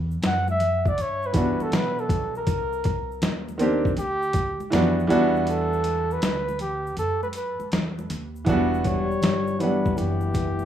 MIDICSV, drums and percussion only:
0, 0, Header, 1, 2, 480
1, 0, Start_track
1, 0, Tempo, 750000
1, 1583, Time_signature, 4, 2, 24, 8
1, 6816, End_track
2, 0, Start_track
2, 0, Title_t, "Drums"
2, 72, Note_on_c, 9, 82, 44
2, 136, Note_off_c, 9, 82, 0
2, 145, Note_on_c, 9, 42, 94
2, 147, Note_on_c, 9, 64, 66
2, 147, Note_on_c, 9, 82, 67
2, 150, Note_on_c, 9, 38, 117
2, 209, Note_off_c, 9, 42, 0
2, 211, Note_off_c, 9, 64, 0
2, 211, Note_off_c, 9, 82, 0
2, 214, Note_off_c, 9, 38, 0
2, 305, Note_on_c, 9, 63, 72
2, 305, Note_on_c, 9, 82, 48
2, 369, Note_off_c, 9, 63, 0
2, 369, Note_off_c, 9, 82, 0
2, 384, Note_on_c, 9, 42, 75
2, 388, Note_on_c, 9, 64, 60
2, 388, Note_on_c, 9, 82, 42
2, 448, Note_off_c, 9, 42, 0
2, 452, Note_off_c, 9, 64, 0
2, 452, Note_off_c, 9, 82, 0
2, 547, Note_on_c, 9, 36, 94
2, 548, Note_on_c, 9, 82, 46
2, 611, Note_off_c, 9, 36, 0
2, 612, Note_off_c, 9, 82, 0
2, 626, Note_on_c, 9, 42, 72
2, 637, Note_on_c, 9, 82, 71
2, 690, Note_off_c, 9, 42, 0
2, 701, Note_off_c, 9, 82, 0
2, 784, Note_on_c, 9, 82, 54
2, 848, Note_off_c, 9, 82, 0
2, 855, Note_on_c, 9, 42, 93
2, 859, Note_on_c, 9, 36, 116
2, 866, Note_on_c, 9, 82, 46
2, 919, Note_off_c, 9, 42, 0
2, 923, Note_off_c, 9, 36, 0
2, 930, Note_off_c, 9, 82, 0
2, 1026, Note_on_c, 9, 63, 64
2, 1026, Note_on_c, 9, 82, 45
2, 1090, Note_off_c, 9, 63, 0
2, 1090, Note_off_c, 9, 82, 0
2, 1101, Note_on_c, 9, 42, 74
2, 1109, Note_on_c, 9, 38, 104
2, 1110, Note_on_c, 9, 82, 62
2, 1165, Note_off_c, 9, 42, 0
2, 1173, Note_off_c, 9, 38, 0
2, 1174, Note_off_c, 9, 82, 0
2, 1271, Note_on_c, 9, 82, 44
2, 1335, Note_off_c, 9, 82, 0
2, 1340, Note_on_c, 9, 36, 107
2, 1343, Note_on_c, 9, 42, 80
2, 1350, Note_on_c, 9, 64, 61
2, 1350, Note_on_c, 9, 82, 41
2, 1404, Note_off_c, 9, 36, 0
2, 1407, Note_off_c, 9, 42, 0
2, 1414, Note_off_c, 9, 64, 0
2, 1414, Note_off_c, 9, 82, 0
2, 1504, Note_on_c, 9, 82, 44
2, 1568, Note_off_c, 9, 82, 0
2, 1579, Note_on_c, 9, 42, 80
2, 1581, Note_on_c, 9, 36, 110
2, 1588, Note_on_c, 9, 82, 57
2, 1643, Note_off_c, 9, 42, 0
2, 1645, Note_off_c, 9, 36, 0
2, 1652, Note_off_c, 9, 82, 0
2, 1746, Note_on_c, 9, 82, 46
2, 1810, Note_off_c, 9, 82, 0
2, 1818, Note_on_c, 9, 42, 78
2, 1825, Note_on_c, 9, 63, 47
2, 1825, Note_on_c, 9, 82, 44
2, 1826, Note_on_c, 9, 36, 107
2, 1882, Note_off_c, 9, 42, 0
2, 1889, Note_off_c, 9, 63, 0
2, 1889, Note_off_c, 9, 82, 0
2, 1890, Note_off_c, 9, 36, 0
2, 1995, Note_on_c, 9, 82, 45
2, 2059, Note_off_c, 9, 82, 0
2, 2060, Note_on_c, 9, 42, 96
2, 2065, Note_on_c, 9, 38, 123
2, 2066, Note_on_c, 9, 64, 62
2, 2066, Note_on_c, 9, 82, 69
2, 2124, Note_off_c, 9, 42, 0
2, 2129, Note_off_c, 9, 38, 0
2, 2130, Note_off_c, 9, 64, 0
2, 2130, Note_off_c, 9, 82, 0
2, 2231, Note_on_c, 9, 63, 68
2, 2231, Note_on_c, 9, 82, 49
2, 2295, Note_off_c, 9, 63, 0
2, 2295, Note_off_c, 9, 82, 0
2, 2300, Note_on_c, 9, 42, 82
2, 2309, Note_on_c, 9, 64, 58
2, 2309, Note_on_c, 9, 82, 43
2, 2364, Note_off_c, 9, 42, 0
2, 2373, Note_off_c, 9, 64, 0
2, 2373, Note_off_c, 9, 82, 0
2, 2465, Note_on_c, 9, 36, 98
2, 2473, Note_on_c, 9, 82, 40
2, 2529, Note_off_c, 9, 36, 0
2, 2537, Note_off_c, 9, 82, 0
2, 2539, Note_on_c, 9, 42, 69
2, 2552, Note_on_c, 9, 82, 75
2, 2603, Note_off_c, 9, 42, 0
2, 2616, Note_off_c, 9, 82, 0
2, 2704, Note_on_c, 9, 82, 50
2, 2768, Note_off_c, 9, 82, 0
2, 2773, Note_on_c, 9, 42, 86
2, 2778, Note_on_c, 9, 36, 105
2, 2785, Note_on_c, 9, 82, 54
2, 2837, Note_off_c, 9, 42, 0
2, 2842, Note_off_c, 9, 36, 0
2, 2849, Note_off_c, 9, 82, 0
2, 2947, Note_on_c, 9, 63, 67
2, 2947, Note_on_c, 9, 82, 45
2, 3011, Note_off_c, 9, 63, 0
2, 3011, Note_off_c, 9, 82, 0
2, 3021, Note_on_c, 9, 42, 75
2, 3029, Note_on_c, 9, 38, 103
2, 3034, Note_on_c, 9, 82, 59
2, 3085, Note_off_c, 9, 42, 0
2, 3093, Note_off_c, 9, 38, 0
2, 3098, Note_off_c, 9, 82, 0
2, 3199, Note_on_c, 9, 82, 42
2, 3263, Note_off_c, 9, 82, 0
2, 3266, Note_on_c, 9, 42, 84
2, 3274, Note_on_c, 9, 64, 62
2, 3274, Note_on_c, 9, 82, 44
2, 3330, Note_off_c, 9, 42, 0
2, 3338, Note_off_c, 9, 64, 0
2, 3338, Note_off_c, 9, 82, 0
2, 3430, Note_on_c, 9, 82, 46
2, 3494, Note_off_c, 9, 82, 0
2, 3499, Note_on_c, 9, 42, 81
2, 3515, Note_on_c, 9, 82, 63
2, 3563, Note_off_c, 9, 42, 0
2, 3579, Note_off_c, 9, 82, 0
2, 3667, Note_on_c, 9, 82, 48
2, 3731, Note_off_c, 9, 82, 0
2, 3737, Note_on_c, 9, 42, 79
2, 3747, Note_on_c, 9, 63, 45
2, 3747, Note_on_c, 9, 82, 45
2, 3801, Note_off_c, 9, 42, 0
2, 3811, Note_off_c, 9, 63, 0
2, 3811, Note_off_c, 9, 82, 0
2, 3909, Note_on_c, 9, 82, 46
2, 3973, Note_off_c, 9, 82, 0
2, 3980, Note_on_c, 9, 42, 99
2, 3986, Note_on_c, 9, 38, 124
2, 3986, Note_on_c, 9, 64, 69
2, 3986, Note_on_c, 9, 82, 69
2, 4044, Note_off_c, 9, 42, 0
2, 4050, Note_off_c, 9, 38, 0
2, 4050, Note_off_c, 9, 64, 0
2, 4050, Note_off_c, 9, 82, 0
2, 4151, Note_on_c, 9, 63, 65
2, 4151, Note_on_c, 9, 82, 47
2, 4215, Note_off_c, 9, 63, 0
2, 4215, Note_off_c, 9, 82, 0
2, 4218, Note_on_c, 9, 42, 73
2, 4230, Note_on_c, 9, 64, 62
2, 4230, Note_on_c, 9, 82, 43
2, 4282, Note_off_c, 9, 42, 0
2, 4294, Note_off_c, 9, 64, 0
2, 4294, Note_off_c, 9, 82, 0
2, 4395, Note_on_c, 9, 82, 45
2, 4459, Note_off_c, 9, 82, 0
2, 4459, Note_on_c, 9, 42, 73
2, 4471, Note_on_c, 9, 82, 76
2, 4523, Note_off_c, 9, 42, 0
2, 4535, Note_off_c, 9, 82, 0
2, 4627, Note_on_c, 9, 63, 53
2, 4627, Note_on_c, 9, 82, 52
2, 4691, Note_off_c, 9, 63, 0
2, 4691, Note_off_c, 9, 82, 0
2, 4691, Note_on_c, 9, 42, 92
2, 4708, Note_on_c, 9, 82, 52
2, 4755, Note_off_c, 9, 42, 0
2, 4772, Note_off_c, 9, 82, 0
2, 4863, Note_on_c, 9, 63, 65
2, 4863, Note_on_c, 9, 82, 47
2, 4927, Note_off_c, 9, 63, 0
2, 4927, Note_off_c, 9, 82, 0
2, 4939, Note_on_c, 9, 42, 76
2, 4947, Note_on_c, 9, 38, 98
2, 4947, Note_on_c, 9, 82, 65
2, 5003, Note_off_c, 9, 42, 0
2, 5011, Note_off_c, 9, 38, 0
2, 5011, Note_off_c, 9, 82, 0
2, 5111, Note_on_c, 9, 63, 67
2, 5111, Note_on_c, 9, 82, 43
2, 5175, Note_off_c, 9, 63, 0
2, 5175, Note_off_c, 9, 82, 0
2, 5184, Note_on_c, 9, 42, 85
2, 5195, Note_on_c, 9, 64, 61
2, 5195, Note_on_c, 9, 82, 45
2, 5248, Note_off_c, 9, 42, 0
2, 5259, Note_off_c, 9, 64, 0
2, 5259, Note_off_c, 9, 82, 0
2, 5350, Note_on_c, 9, 82, 45
2, 5414, Note_off_c, 9, 82, 0
2, 5417, Note_on_c, 9, 42, 70
2, 5419, Note_on_c, 9, 36, 109
2, 5435, Note_on_c, 9, 82, 54
2, 5481, Note_off_c, 9, 42, 0
2, 5483, Note_off_c, 9, 36, 0
2, 5499, Note_off_c, 9, 82, 0
2, 5594, Note_on_c, 9, 82, 46
2, 5658, Note_off_c, 9, 82, 0
2, 5660, Note_on_c, 9, 42, 68
2, 5665, Note_on_c, 9, 36, 93
2, 5671, Note_on_c, 9, 82, 38
2, 5724, Note_off_c, 9, 42, 0
2, 5729, Note_off_c, 9, 36, 0
2, 5735, Note_off_c, 9, 82, 0
2, 5833, Note_on_c, 9, 82, 41
2, 5897, Note_off_c, 9, 82, 0
2, 5901, Note_on_c, 9, 64, 66
2, 5901, Note_on_c, 9, 82, 67
2, 5905, Note_on_c, 9, 42, 93
2, 5911, Note_on_c, 9, 38, 106
2, 5965, Note_off_c, 9, 64, 0
2, 5965, Note_off_c, 9, 82, 0
2, 5969, Note_off_c, 9, 42, 0
2, 5975, Note_off_c, 9, 38, 0
2, 6063, Note_on_c, 9, 82, 49
2, 6127, Note_off_c, 9, 82, 0
2, 6144, Note_on_c, 9, 64, 54
2, 6144, Note_on_c, 9, 82, 38
2, 6146, Note_on_c, 9, 42, 74
2, 6208, Note_off_c, 9, 64, 0
2, 6208, Note_off_c, 9, 82, 0
2, 6210, Note_off_c, 9, 42, 0
2, 6307, Note_on_c, 9, 82, 44
2, 6308, Note_on_c, 9, 36, 89
2, 6371, Note_off_c, 9, 82, 0
2, 6372, Note_off_c, 9, 36, 0
2, 6383, Note_on_c, 9, 82, 70
2, 6387, Note_on_c, 9, 42, 72
2, 6447, Note_off_c, 9, 82, 0
2, 6451, Note_off_c, 9, 42, 0
2, 6533, Note_on_c, 9, 63, 48
2, 6533, Note_on_c, 9, 82, 50
2, 6597, Note_off_c, 9, 63, 0
2, 6597, Note_off_c, 9, 82, 0
2, 6618, Note_on_c, 9, 82, 47
2, 6620, Note_on_c, 9, 36, 99
2, 6622, Note_on_c, 9, 42, 87
2, 6682, Note_off_c, 9, 82, 0
2, 6684, Note_off_c, 9, 36, 0
2, 6686, Note_off_c, 9, 42, 0
2, 6778, Note_on_c, 9, 63, 60
2, 6778, Note_on_c, 9, 82, 47
2, 6816, Note_off_c, 9, 63, 0
2, 6816, Note_off_c, 9, 82, 0
2, 6816, End_track
0, 0, End_of_file